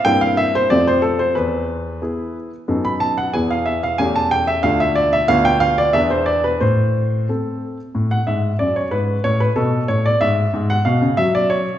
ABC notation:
X:1
M:2/4
L:1/16
Q:1/4=92
K:Am
V:1 name="Grand piano"
g f e c d c A c | B6 z2 | z b a ^f ^g =f e f | ^g a =g e f e d e |
f g f d e c d B | c4 z4 | [K:A] z f e2 d c B2 | c B A2 c d e2 |
z f ^e2 =e d c2 |]
V:2 name="Grand piano"
[G,,_B,CE]4 [F,,A,CF]4 | E,,4 [B,E^G]4 | [^F,,B,^DA]4 [E,,B,E^G]4 | [E,,A,^CG]4 [D,,A,DF]4 |
[D,,B,DF]4 [E,,B,D^G]4 | A,,4 [A,CA]4 | [K:A] A,,2 G,,2 F,,2 G,,2 | A,,2 B,,2 A,,2 G,,2 |
G,,2 B,, C, F,4 |]